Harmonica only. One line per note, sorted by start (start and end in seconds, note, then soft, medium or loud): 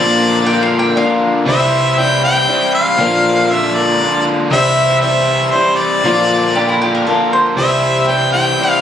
0.00 0.66 D5 loud
1.48 2.00 E5 loud
1.99 2.23 G5 loud
2.24 2.71 G5 loud
2.75 3.52 F5 loud
3.51 3.76 E5 medium
3.75 4.26 D5 medium
4.53 4.99 E5 loud
5.01 5.53 E5 loud
5.51 5.75 C5 medium
5.76 6.75 D5 loud
7.57 8.09 E5 loud
8.08 8.32 G5 loud
8.32 8.70 G5 loud
8.70 8.81 F5 loud